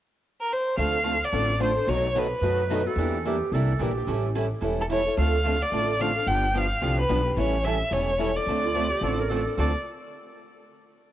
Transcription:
0.40 violin A#4
0.52 violin C5
0.77 upright bass D2, steel-string acoustic guitar D3 F3 A3 C4 D4 F4 A4, violin F5
1.03 steel-string acoustic guitar D3 F3 A3 C4 D4 F4 A4
1.24 violin D5
1.32 upright bass A1, steel-string acoustic guitar D3 F3 A3 C4 D4 F4 A4
1.59 steel-string acoustic guitar D3 F3 A3 C4 D4 F4 A4, violin C5
1.75 steel-string acoustic guitar C4 D4 A4
1.87 upright bass B1, steel-string acoustic guitar B2 D#3 F#3 A3 B3 D#4 F#4 A4, violin C#5
2.15 steel-string acoustic guitar B2 D#3 F#3 A3 B3 D#4 F#4 A4, violin B4
2.41 upright bass F#2, steel-string acoustic guitar B2 D#3 F#3 A3 B3 D#4 F#4 A4, clarinet B4
2.70 steel-string acoustic guitar B2 D#3 F#3 A3 B3 D#4 F#4 A4
2.86 steel-string acoustic guitar A3 D#4 F#4, clarinet A4
2.96 upright bass E2, steel-string acoustic guitar E3 G3 A#3 D4 E4 G4 A#4
3.25 steel-string acoustic guitar E3 G3 A#3 D4 E4 G4 A#4, clarinet G4
3.52 upright bass C2, steel-string acoustic guitar E3 G3 A#3 D4 E4 G4 A#4, clarinet A4
3.80 upright bass A#1, steel-string acoustic guitar E3 G3 A#3 D4 E4 G4 A#4, clarinet G4
3.98 steel-string acoustic guitar A#3 D4 G4
4.07 upright bass A1, steel-string acoustic guitar E3 G3 C#4 E4 A4
4.36 steel-string acoustic guitar E3 G3 C#4 E4 A4
4.62 upright bass E1, steel-string acoustic guitar E3 G3 C#4 E4 A4
4.81 violin A4
4.91 steel-string acoustic guitar E3 G3 C#4 E4 A4, violin C#5
5.06 steel-string acoustic guitar C#4 E4 A4
5.17 upright bass D2, steel-string acoustic guitar D3 F3 A3 C4 D4 F4 A4, violin F5
5.44 steel-string acoustic guitar D3 F3 A3 C4 D4 F4 A4
5.62 violin D5
5.72 upright bass A1, steel-string acoustic guitar D3 F3 A3 C4 D4 F4 A4
5.99 steel-string acoustic guitar D3 F3 A3 C4 D4 F4 A4, violin F5
6.16 steel-string acoustic guitar C4 D4 A4
6.27 upright bass G1, steel-string acoustic guitar D3 F3 B3 D4 G4, violin G5
6.55 steel-string acoustic guitar D3 F3 B3 D4 G4, violin F5
6.81 upright bass C2, steel-string acoustic guitar D3 F3 B3 D4 G4
7.00 violin B4
7.09 upright bass B1, steel-string acoustic guitar D3 F3 B3 D4 G4
7.26 steel-string acoustic guitar B3 D4 G4
7.36 upright bass A1, steel-string acoustic guitar E3 G3 C#4 E4 A4, violin C#5
7.63 steel-string acoustic guitar E3 G3 C#4 E4 A4, violin E5
7.91 upright bass E1, steel-string acoustic guitar E3 G3 C#4 E4 A4, violin C#5
8.18 steel-string acoustic guitar E3 G3 C#4 E4 A4
8.35 steel-string acoustic guitar C#4 E4 A4, violin D5
8.47 upright bass D2, steel-string acoustic guitar D3 F3 A3 C4 D4 F4 A4
8.63 clarinet F4
8.74 steel-string acoustic guitar D3 F3 A3 C4 D4 F4 A4
8.91 clarinet G4
9.01 upright bass A1, steel-string acoustic guitar D3 F3 A3 C4 D4 F4 A4, clarinet A4
9.20 clarinet A#4
9.30 steel-string acoustic guitar D3 F3 A3 C4 D4 F4 A4, clarinet A4
9.45 steel-string acoustic guitar C4 D4 A4
9.56 upright bass D2, steel-string acoustic guitar D3 F3 A3 C4 D4 F4 A4, clarinet A4, violin D5

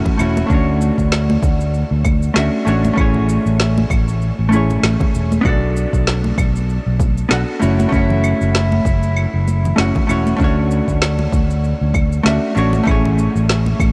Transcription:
Already playing: hollow-body jazz guitar A3 C#4 E4 F#4 F#5
0.05 kick, low conga
0.17 fingered electric bass E1, hollow-body jazz guitar A3 C#4 E4 F#4 C#5, cabasa, claves
0.37 high conga, cabasa
0.46 fingered electric bass D2, hollow-body jazz guitar A3 C#4 D4, kick, cabasa
0.52 hollow-body jazz guitar F#4 C#5
0.81 cabasa
0.98 fingered electric bass D2, kick, cabasa
1.12 snare, cabasa, claves
1.30 high conga
1.43 fingered electric bass D2, kick, cabasa
1.60 cabasa
1.74 cabasa
1.91 fingered electric bass D2
2.04 kick, high conga, cabasa, claves
2.22 cabasa
2.34 fingered electric bass D2, hollow-body jazz guitar A3 C#4 D4 F#4 E5, snare, cabasa
2.65 fingered electric bass A1, hollow-body jazz guitar A3 C#4 D4 F#4 C#5, cabasa
2.84 high conga, cabasa
2.93 fingered electric bass A1, hollow-body jazz guitar A3 C#4 E4, kick
2.98 hollow-body jazz guitar G#4 C#5, cabasa, claves
3.14 low conga
3.29 cabasa
3.46 fingered electric bass A1, cabasa
3.60 snare, cabasa
3.78 high conga
3.90 fingered electric bass A1, kick, cabasa, claves
4.08 cabasa
4.22 cabasa
4.39 fingered electric bass A1
4.49 hollow-body jazz guitar A3 C#4 E4, high conga, cabasa
4.54 hollow-body jazz guitar G#4 C#5
4.70 low conga, cabasa
4.83 fingered electric bass A1, snare, cabasa, claves
5.00 kick, low conga
5.14 fingered electric bass E1, cabasa
5.32 high conga, cabasa
5.41 fingered electric bass B1, hollow-body jazz guitar B3 D4 F#4, kick
5.45 hollow-body jazz guitar A4 D5, cabasa, claves
5.77 cabasa
5.93 fingered electric bass B1, kick, cabasa
6.07 snare, cabasa
6.24 high conga
6.38 fingered electric bass B1, kick, cabasa, claves
6.56 cabasa
6.69 cabasa
6.86 fingered electric bass B1
7.00 kick, high conga, cabasa
7.18 cabasa
7.29 fingered electric bass B1, hollow-body jazz guitar B3 D4 F#4 A4 F#5, snare, cabasa, claves
7.59 fingered electric bass F#1, hollow-body jazz guitar A3 C#4 E4 F#4 C#5, cabasa
7.79 high conga, cabasa
7.89 fingered electric bass F#1, hollow-body jazz guitar A3 C#4 E4, kick
7.93 hollow-body jazz guitar F#4 C#5, cabasa
8.10 low conga
8.24 cabasa, claves
8.41 fingered electric bass F#1, cabasa
8.55 snare, cabasa
8.72 high conga
8.85 fingered electric bass F#1, kick, cabasa
9.03 cabasa
9.17 cabasa, claves
9.34 fingered electric bass F#1
9.48 high conga, cabasa
9.65 low conga, cabasa
9.76 fingered electric bass F#1, hollow-body jazz guitar A3 C#4 E4 F#4, snare, cabasa
9.80 hollow-body jazz guitar F#5
9.95 kick, low conga
10.07 fingered electric bass E1, hollow-body jazz guitar A3 C#4 E4 F#4 C#5, cabasa, claves
10.27 high conga, cabasa
10.36 fingered electric bass D2, hollow-body jazz guitar A3 C#4 D4, kick, cabasa
10.42 hollow-body jazz guitar F#4 C#5
10.71 cabasa
10.88 fingered electric bass D2, kick, cabasa
11.02 snare, cabasa, claves
11.19 high conga
11.32 fingered electric bass D2, kick, cabasa
11.50 cabasa
11.64 cabasa
11.81 fingered electric bass D2
11.94 kick, high conga, cabasa, claves
12.12 cabasa
12.23 fingered electric bass D2, hollow-body jazz guitar A3 C#4 D4 F#4 E5, snare, cabasa
12.55 fingered electric bass A1, hollow-body jazz guitar A3 C#4 D4 F#4 C#5, cabasa
12.73 high conga, cabasa
12.83 fingered electric bass A1, hollow-body jazz guitar A3 C#4 E4, kick, claves
12.88 hollow-body jazz guitar G#4 C#5, cabasa
13.05 low conga
13.19 cabasa
13.35 fingered electric bass A1, cabasa
13.49 snare, cabasa
13.66 high conga
13.80 fingered electric bass A1, kick, cabasa, claves

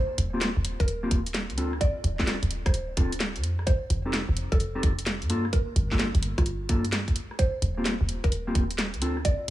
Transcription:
Already playing: synth pluck C5
0.18 808-style bass D#1, closed hi-hat
0.33 clean electric guitar A#3 C4 F4 G4
0.41 snare, closed hi-hat
0.57 808-style bass D#1
0.65 closed hi-hat
0.80 808-style bass D#1, synth pluck A#4, kick, closed hi-hat
0.88 closed hi-hat
1.03 clean electric guitar A#3 C4 F4 G4
1.11 808-style bass D#1, kick, closed hi-hat
1.26 closed hi-hat
1.34 snare, closed hi-hat
1.50 808-style bass D2, closed hi-hat
1.57 clean electric guitar C4 D4 F4 A4, closed hi-hat
1.73 cross-stick
1.81 synth pluck D5, kick, closed hi-hat
2.04 808-style bass D1, closed hi-hat
2.19 clean electric guitar C4 D4 F4 A4, kick, snare
2.27 snare, closed hi-hat
2.43 808-style bass D1, closed hi-hat
2.51 closed hi-hat
2.66 808-style bass D1, synth pluck C5, kick, cross-stick, closed hi-hat
2.74 closed hi-hat
2.97 808-style bass D1, clean electric guitar C4 D4 F4 A4, kick, closed hi-hat
3.12 closed hi-hat
3.20 snare, closed hi-hat
3.36 808-style bass F2, closed hi-hat
3.44 closed hi-hat
3.59 cross-stick
3.67 synth pluck C5, kick, closed hi-hat
3.90 808-style bass F1, closed hi-hat
4.05 clean electric guitar C4 D#4 G4 A4
4.13 snare, closed hi-hat
4.29 808-style bass F1
4.37 closed hi-hat
4.52 808-style bass F1, synth pluck A4, kick, closed hi-hat
4.60 closed hi-hat
4.75 clean electric guitar C4 D#4 G4 A4
4.83 808-style bass F1, kick, closed hi-hat
4.99 closed hi-hat
5.06 snare, closed hi-hat
5.22 808-style bass G2, closed hi-hat
5.30 clean electric guitar A#3 D4 F4 A4, closed hi-hat
5.45 cross-stick
5.53 synth pluck A#4, kick, closed hi-hat
5.76 808-style bass G1, closed hi-hat
5.91 clean electric guitar A#3 D4 F4 A4, kick, snare
5.99 snare, closed hi-hat
6.15 808-style bass G1, closed hi-hat
6.23 closed hi-hat
6.38 808-style bass G1, synth pluck F4, kick, cross-stick, closed hi-hat
6.46 closed hi-hat
6.69 808-style bass G2, clean electric guitar A#3 D4 F4 A4, kick, closed hi-hat
6.85 closed hi-hat
6.92 snare, closed hi-hat
7.08 808-style bass D2, kick, closed hi-hat
7.16 closed hi-hat
7.31 cross-stick
7.39 synth pluck C5, kick, closed hi-hat
7.62 808-style bass D#1, closed hi-hat
7.77 clean electric guitar A#3 C4 F4 G4
7.85 snare, closed hi-hat
8.01 808-style bass D#1
8.09 closed hi-hat
8.24 808-style bass D#1, synth pluck A#4, kick, closed hi-hat
8.32 closed hi-hat
8.47 clean electric guitar A#3 C4 F4 G4
8.55 808-style bass D#1, kick, closed hi-hat
8.71 closed hi-hat
8.78 snare, closed hi-hat
8.94 808-style bass D2, closed hi-hat
9.02 clean electric guitar C4 D4 F4 A4, closed hi-hat
9.17 cross-stick
9.25 synth pluck D5, kick, closed hi-hat

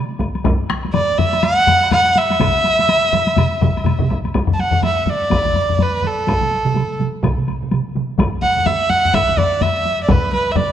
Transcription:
0.19 taiko, taiko high, high woodblock
0.35 taiko high, high woodblock
0.44 taiko, taiko low-mid, taiko high, high woodblock
0.69 taiko rim, taiko high, high woodblock
0.83 taiko high, high woodblock
0.94 erhu D5, taiko low-mid, taiko high, high woodblock
1.18 erhu E5, taiko low-mid, taiko high, high woodblock
1.33 taiko high, high woodblock
1.43 erhu F#5, taiko high, high woodblock
1.67 taiko low-mid, taiko high, high woodblock
1.83 high woodblock
1.91 erhu F#5, taiko low-mid, taiko high, high woodblock
2.16 erhu E5, taiko high, high woodblock
2.30 taiko high, high woodblock
2.40 taiko, taiko low-mid, taiko mid, taiko high, high woodblock
2.64 taiko high, high woodblock
2.79 taiko high, high woodblock
2.89 taiko high, high woodblock
3.12 taiko low-mid, taiko mid, taiko high, high woodblock
3.27 taiko high, high woodblock
3.36 taiko low-mid, taiko mid, taiko high, high woodblock
3.61 taiko, taiko low-mid, taiko mid, taiko high, high woodblock
3.77 taiko high, high woodblock
3.84 taiko low-mid, taiko mid, taiko high, high woodblock
3.99 taiko low-mid, taiko mid
4.10 taiko, taiko high, high woodblock
4.25 taiko high, high woodblock
4.34 taiko, taiko high, high woodblock
4.47 taiko low-mid, taiko high
4.54 erhu A5
4.59 erhu F#5, taiko high
4.71 taiko low-mid, taiko high
4.82 erhu E5, taiko low-mid, taiko high, high woodblock
4.98 taiko high
5.03 erhu E5, taiko low-mid
5.07 erhu D5, taiko high
5.21 taiko high
5.30 taiko, taiko low-mid, taiko high, high woodblock
5.45 taiko low-mid, taiko high
5.53 taiko low-mid, taiko high, high woodblock
5.69 taiko low-mid, taiko high
5.78 erhu B4, taiko low-mid, taiko high, high woodblock
6.03 erhu A4, taiko low-mid, taiko high
6.18 taiko high
6.27 taiko, taiko high, high woodblock
6.41 taiko mid, taiko high
6.51 taiko high
6.65 taiko mid, taiko high
6.75 taiko mid, taiko high, high woodblock
6.90 taiko high
6.99 taiko mid, taiko high
7.15 taiko high
7.23 taiko, taiko mid, taiko high, high woodblock
7.38 taiko mid, taiko high
7.48 taiko mid, taiko high, high woodblock
7.62 taiko mid, taiko high
7.71 taiko mid, taiko high, high woodblock
7.95 taiko mid, taiko high
8.09 taiko high
8.18 taiko, taiko low-mid, taiko high, high woodblock
8.32 taiko high
8.42 erhu F#5, taiko low-mid, taiko high
8.57 taiko low-mid, taiko high
8.66 erhu E5, taiko low-mid, taiko high, high woodblock
8.81 taiko high
8.90 erhu F#5, taiko low-mid, taiko high
9.05 taiko low-mid, taiko high
9.14 erhu E5, taiko, taiko low-mid, taiko high, high woodblock
9.29 taiko low-mid, taiko high
9.37 erhu D5, taiko low-mid, taiko high, high woodblock
9.53 taiko high
9.61 erhu E5, taiko low-mid, taiko high, high woodblock
9.85 taiko high
10.00 erhu D5, taiko high
10.09 erhu B4, taiko, taiko low-mid, taiko mid, taiko high, high woodblock
10.24 taiko high
10.33 erhu B4, taiko high
10.48 taiko high
10.52 erhu E5, taiko low-mid
10.56 erhu D5, taiko mid, taiko high, high woodblock

